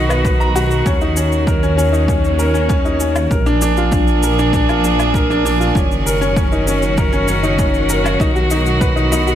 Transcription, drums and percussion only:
0.10 low woodblock medium
0.10 shaker soft
0.25 kick loud
0.25 shaker soft
0.41 shaker soft
0.56 shaker medium
0.71 shaker soft
0.86 kick loud
0.86 shaker soft
1.01 shaker soft
1.17 shaker medium
1.32 shaker soft
1.47 kick loud
1.47 shaker soft
1.63 shaker soft
1.79 shaker medium
1.94 shaker soft
2.08 kick loud
2.08 shaker soft
2.24 shaker soft
2.39 shaker medium
2.55 shaker soft
2.70 kick loud
2.70 shaker soft
2.85 shaker soft
3.00 shaker medium
3.16 low woodblock medium
3.16 shaker soft
3.31 kick loud
3.31 shaker soft
3.46 shaker soft
3.62 shaker medium
3.77 shaker soft
3.92 kick loud
3.92 shaker soft
4.07 shaker soft
4.23 shaker medium
4.39 shaker soft
4.53 kick loud
4.53 shaker soft
4.69 low woodblock medium
4.69 shaker soft
4.84 shaker medium
5.00 low woodblock medium
5.00 shaker soft
5.14 kick loud
5.14 shaker soft
5.31 shaker soft
5.46 shaker medium
5.61 shaker soft
5.75 kick loud
5.75 shaker soft
5.92 shaker soft
6.07 shaker medium
6.22 shaker soft
6.36 kick loud
6.36 shaker soft
6.52 shaker soft
6.67 shaker medium
6.82 shaker soft
6.98 kick loud
6.98 shaker soft
7.13 shaker soft
7.28 shaker medium
7.44 shaker soft
7.59 kick loud
7.59 shaker soft
7.74 shaker soft
7.89 shaker medium
8.06 low woodblock medium
8.06 shaker soft
8.20 kick loud
8.20 shaker soft
8.36 shaker soft
8.51 shaker medium
8.66 shaker soft
8.81 kick loud
8.81 shaker soft
8.97 shaker soft
9.12 shaker medium
9.27 shaker soft

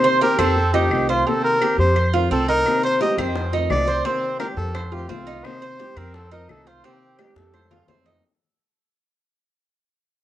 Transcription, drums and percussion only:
0.39 claves medium
0.91 claves medium
1.61 claves medium
1.96 claves medium
2.66 high bongo medium
2.66 claves medium
3.01 high bongo medium
3.18 high bongo soft
3.18 claves medium
3.35 high bongo medium
3.53 high bongo soft
3.70 high bongo soft
3.70 low bongo medium
3.70 claves medium
3.88 high bongo soft
4.05 high bongo medium
4.40 high bongo medium
4.40 claves medium
4.58 high bongo soft
4.75 high bongo medium
4.75 claves medium
4.93 high bongo soft
5.10 high bongo soft
5.10 low bongo medium
5.28 high bongo soft
5.44 high bongo medium
5.44 claves medium
5.80 high bongo medium
5.96 high bongo soft
5.96 claves medium
6.14 high bongo medium
6.32 high bongo soft
6.49 high bongo soft
6.49 low bongo medium
6.49 claves medium
6.67 high bongo soft
6.84 high bongo medium
7.19 high bongo medium
7.19 claves medium
7.36 high bongo medium
7.54 high bongo medium
7.54 claves medium
7.71 low bongo loud
7.88 low bongo medium
8.06 low bongo medium

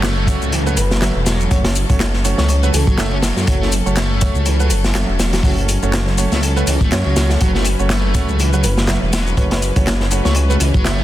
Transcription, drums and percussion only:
0.03 snare loud
0.03 clap loud
0.03 closed hi-hat medium
0.03 shaker soft
0.27 kick medium
0.27 closed hi-hat medium
0.27 open hi-hat medium
0.27 shaker medium
0.42 shaker soft
0.52 closed hi-hat loud
0.52 shaker soft
0.66 shaker soft
0.77 closed hi-hat medium
0.77 open hi-hat medium
0.77 shaker medium
0.91 snare medium
0.91 shaker soft
1.02 snare loud
1.02 clap loud
1.02 closed hi-hat medium
1.02 shaker soft
1.27 snare loud
1.27 closed hi-hat medium
1.27 open hi-hat medium
1.27 shaker medium
1.40 shaker soft
1.51 kick medium
1.51 closed hi-hat medium
1.51 shaker soft
1.65 snare loud
1.65 closed hi-hat medium
1.76 open hi-hat medium
1.76 shaker medium
1.90 kick medium
1.90 closed hi-hat medium
1.90 shaker soft
2.00 snare loud
2.00 clap loud
2.00 closed hi-hat medium
2.00 shaker soft
2.14 snare soft
2.25 closed hi-hat medium
2.25 open hi-hat medium
2.25 shaker medium
2.38 snare soft
2.38 shaker soft
2.49 closed hi-hat medium
2.49 shaker soft
2.63 shaker soft
2.74 closed hi-hat medium
2.74 open hi-hat medium
2.74 shaker medium
2.87 kick loud
2.87 shaker soft
2.98 snare loud
2.98 clap loud
2.98 closed hi-hat medium
2.98 shaker soft
3.23 snare loud
3.23 closed hi-hat medium
3.23 open hi-hat medium
3.23 shaker medium
3.37 snare soft
3.37 shaker soft
3.47 kick loud
3.47 closed hi-hat loud
3.47 shaker soft
3.62 snare soft
3.72 closed hi-hat medium
3.72 open hi-hat medium
3.72 shaker medium
3.86 shaker soft
3.96 snare loud
3.96 clap loud
3.96 closed hi-hat medium
3.96 shaker soft
4.21 kick loud
4.21 closed hi-hat medium
4.21 open hi-hat medium
4.21 shaker medium
4.35 shaker soft
4.46 closed hi-hat loud
4.46 shaker soft
4.60 shaker soft
4.70 closed hi-hat medium
4.70 open hi-hat medium
4.70 shaker medium
4.84 snare medium
4.84 shaker soft
4.95 snare loud
4.95 clap loud
4.95 closed hi-hat medium
4.95 shaker soft
5.20 snare loud
5.20 closed hi-hat medium
5.20 open hi-hat medium
5.20 shaker medium
5.33 snare loud
5.33 closed hi-hat medium
5.33 shaker soft
5.43 kick loud
5.43 open hi-hat medium
5.43 shaker soft
5.58 closed hi-hat soft
5.68 closed hi-hat medium
5.68 open hi-hat medium
5.68 shaker medium
5.83 shaker soft
5.93 snare loud
5.93 clap loud
5.93 closed hi-hat medium
5.93 shaker soft
6.07 snare soft
6.18 closed hi-hat medium
6.18 open hi-hat medium
6.18 shaker medium
6.32 snare soft
6.32 shaker soft
6.43 closed hi-hat medium
6.43 shaker soft
6.57 shaker soft
6.67 closed hi-hat medium
6.67 open hi-hat medium
6.67 shaker medium
6.81 kick loud
6.81 shaker soft
6.92 snare loud
6.92 clap loud
6.92 closed hi-hat medium
6.92 shaker soft
7.16 snare loud
7.16 closed hi-hat medium
7.16 open hi-hat medium
7.16 shaker medium
7.29 snare soft
7.29 shaker soft
7.41 kick loud
7.41 closed hi-hat medium
7.41 shaker soft
7.55 snare soft
7.65 closed hi-hat medium
7.65 open hi-hat medium
7.65 shaker medium
7.79 shaker soft
7.90 snare loud
7.90 clap loud
7.90 closed hi-hat medium
7.90 shaker soft
8.15 kick loud
8.15 closed hi-hat medium
8.15 open hi-hat medium
8.15 shaker medium
8.29 shaker soft
8.39 closed hi-hat medium
8.39 shaker soft
8.53 shaker soft
8.64 closed hi-hat medium
8.64 open hi-hat medium
8.64 shaker medium
8.78 snare medium
8.78 shaker soft
8.88 snare loud
8.88 clap loud
8.88 closed hi-hat medium
8.88 shaker soft
9.13 snare loud
9.13 closed hi-hat medium
9.13 open hi-hat medium
9.13 shaker medium
9.27 shaker soft
9.37 kick loud
9.37 closed hi-hat medium
9.37 shaker soft
9.51 snare medium
9.51 closed hi-hat medium
9.62 open hi-hat medium
9.62 shaker medium
9.76 kick medium
9.76 closed hi-hat medium
9.76 shaker soft
9.87 snare loud
9.87 clap loud
9.87 closed hi-hat loud
9.87 shaker soft
10.00 snare soft
10.11 closed hi-hat medium
10.11 open hi-hat medium
10.11 shaker medium
10.25 snare soft
10.25 shaker soft
10.35 closed hi-hat loud
10.35 shaker soft
10.50 shaker soft
10.60 closed hi-hat medium
10.60 open hi-hat medium
10.60 shaker medium
10.74 kick loud
10.74 shaker soft
10.85 snare medium
10.85 clap loud
10.85 closed hi-hat medium
10.85 shaker soft

